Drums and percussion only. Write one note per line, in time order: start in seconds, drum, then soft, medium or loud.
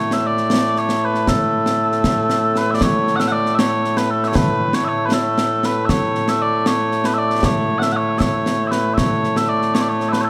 0.11 snare medium
0.37 snare soft
0.50 snare medium
0.76 snare soft
0.89 snare medium
1.15 snare soft
1.27 concert bass drum medium
1.27 snare medium
1.66 snare medium
1.92 snare soft
2.04 concert bass drum medium
2.04 snare medium
2.30 snare medium
2.56 snare medium
2.81 concert bass drum medium
2.81 snare loud
3.07 snare soft
3.20 snare medium
3.46 snare soft
3.59 snare loud
3.84 snare soft
3.97 snare medium
4.23 snare soft
4.35 concert bass drum medium
4.35 snare loud
4.73 snare medium
5.12 snare loud
5.38 snare medium
5.63 snare medium
5.89 concert bass drum medium
5.89 snare loud
6.15 snare soft
6.28 snare medium
6.66 snare loud
6.92 snare soft
7.04 snare medium
7.30 snare soft
7.43 concert bass drum medium
7.43 snare loud
7.82 snare medium
8.20 concert bass drum medium
8.20 snare loud
8.46 snare medium
8.72 snare medium
8.98 concert bass drum medium
8.98 snare loud
9.24 snare soft
9.36 snare medium
9.62 snare soft
9.75 snare loud
10.00 snare soft
10.13 snare medium